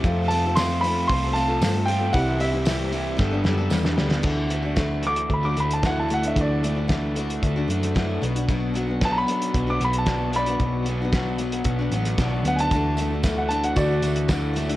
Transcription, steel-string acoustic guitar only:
X:1
M:4/4
L:1/16
Q:1/4=114
K:Dmix
V:1 name="Steel-string acoustic guitar"
[=F,C=FA]2 [F,CFA] [CFA] [F,CFA]2 [F,CFA]3 [CFA] [F,CFA] [CFA] [F,CFA] [CFA] [F,CFA] [CFA] | [C,E,CEG]2 [E,CEG] [CEG] [C,E,CEG]2 [E,CEG]2 [G,B,DA] [B,DA] [G,B,DA] [B,DA] [G,B,DA] [B,DA] [G,B,DA]2 | [D,E,A,DF]2 [E,A,DF] [A,DF] [D,E,A,DF]2 [E,A,DF]3 [A,DF] [E,A,DF]2 [D,E,A,DF]2 [E,A,DF] [A,DF] | [D,E,A,DF]2 [E,A,DF] [A,DF] [D,E,A,DF]2 [E,A,DF]3 [A,DF] [E,A,DF]2 [D,E,A,DF]2 [F,B,DF] [B,DF] |
[B,,F,B,DF]2 [F,B,DF] [B,DF] [B,,F,B,DF]2 [F,B,DF]3 [B,DF] [F,B,DF]2 [B,,F,B,DF]2 [F,B,DF] [B,DF] | [B,,F,B,DF]2 [F,B,DF] [B,DF] [B,,F,B,DF]2 [F,B,DF]3 [B,DF] [F,B,DF]2 [B,,F,B,DF]2 [F,B,DF] [B,DF] | [D,E,A,DF]2 [E,A,DF] [A,DF] [D,E,A,DF]2 [E,A,DF]3 [A,DF] [E,A,DF]2 [D,E,A,DF]2 [E,A,DF] [A,DF] |]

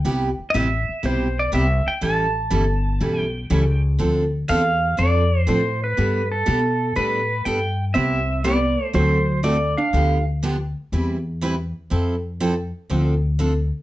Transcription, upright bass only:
X:1
M:4/4
L:1/8
Q:"Swing" 1/4=121
K:C
V:1 name="Upright bass" clef=bass
C,, z A,,, z B,,,2 C,, z | A,,,2 G,,,2 B,,,2 ^C,,2 | D,,2 E,,2 F,,2 A,,2 | G,,2 B,,2 A,,2 G,,2 |
C,,4 D,,4 | D,,4 E,,4 | F,,4 D,,4 |]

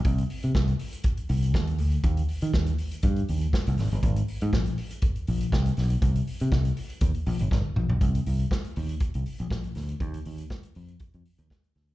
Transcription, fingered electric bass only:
X:1
M:4/4
L:1/16
Q:1/4=120
K:Cm
V:1 name="Fingered electric bass" clef=bass
C,,2 z C, C,,2 z4 C,,2 E,,2 D,,2 | E,,2 z E, E,,2 z2 G,,2 E,,2 z C,, A,,, G,,, | A,,,2 z A,, B,,,2 z4 B,,,2 C,,2 =B,,,2 | C,,2 z C, C,,2 z2 E,, z B,,, G,,, G,,, z B,,, =B,,, |
C,,2 C,,2 z2 E,,2 z C,, z B,,, B,,,2 D,,2 | E,,2 E,,2 z2 F,,2 z F,, z E,, z2 D,,2 |]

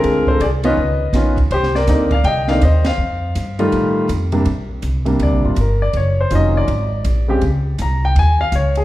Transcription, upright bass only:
X:1
M:4/4
L:1/8
Q:"Swing" 1/4=162
K:Bb
V:1 name="Upright bass" clef=bass
D,,2 C,,2 _D,,2 B,,,2 | C,,2 D,,2 C,,2 E,,2 | F,,2 G,,2 A,,2 F,,2 | B,,,2 C,,2 (3D,, B,,, G,,, G,,,2 |
_G,,,2 F,,,2 _A,,,2 B,,,2 | _D,,2 C,,2 E,,2 D,,2 |]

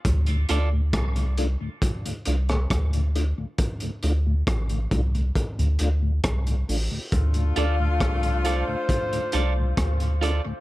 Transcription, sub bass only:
X:1
M:4/4
L:1/16
Q:1/4=68
K:Dm
V:1 name="Sub bass" clef=bass
D,,2 D,,2 C,,3 z3 C,,2 D,,3 z | z2 D,,2 A,,,2 C,,2 z D,, D,,2 C,,2 A,,, z | D,,2 D,,2 C,,3 z3 C,,2 D,,3 z |]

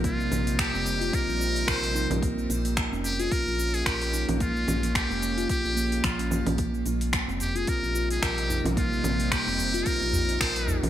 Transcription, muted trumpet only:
X:1
M:4/4
L:1/16
Q:"Swing 16ths" 1/4=110
K:Cphr
V:1 name="Muted trumpet"
F4 G4 B4 c3 z | z6 G A B3 A G3 z | F4 G4 G4 F3 z | z6 G A B3 A G3 z |
F4 G4 B4 c3 z |]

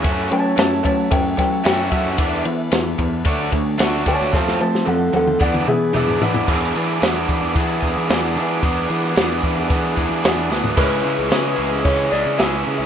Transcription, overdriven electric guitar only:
X:1
M:4/4
L:1/8
Q:1/4=112
K:Emix
V:1 name="Overdriven electric guitar"
[A,CF] [A,C] [A,C] [A,C] [A,C] [A,C] [A,CF] [A,CF] | [E,B,D] [E,B,] [E,B,] [E,B,] [A,DF] [A,D] [A,DF] [A,DF] | [A,=C=F] [A,C] [A,C] [A,C] [E,B,D] [E,B,] [E,B,D] [E,B,D] | [E,B,DG] [B,DG] [E,B,DG]2 [E,B,DG] [B,DG] [E,B,DG] [B,DG] |
[E,B,DG] [B,DG] [E,B,DG]2 [E,B,DG] [B,DG] [E,B,DG] [B,DG] | [E,G,CG] [G,CG] [E,G,CG] [G,CG]2 [G,CG] [E,G,CG]2 |]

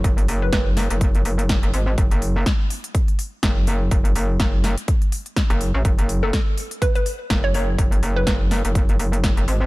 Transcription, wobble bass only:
X:1
M:4/4
L:1/16
Q:"Swing 16ths" 1/4=124
K:F#m
V:1 name="Wobble bass" clef=bass
F,,,2 F,,,2 F,,,3 F,,,3 F,,,3 F,,, G,,,2 | F,,, F,,,3 z8 F,,,4 | F,,,2 F,,,2 F,,,3 z6 F,,,2 A,,, | F,,, F,,,3 z8 F,,,4 |
F,,,2 F,,,2 F,,,3 F,,,3 F,,,3 F,,, G,,,2 |]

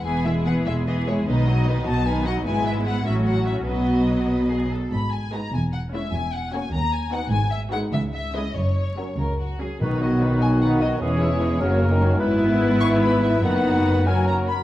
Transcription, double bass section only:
X:1
M:6/8
L:1/8
Q:3/8=99
K:E
V:1 name="Double bass section" clef=bass
E,,,3 E,,,3 | B,,,3 B,,,3 | G,,,3 A,,,3 | B,,,4- B,,, z |
[K:B] G,,,3 E,,,3 | E,,,3 D,,3 | G,,,3 C,,3 | F,,,3 C,,3 |
B,,,6 | E,,,3 F,,,3 | G,,,6 | F,,,4- F,,, z |]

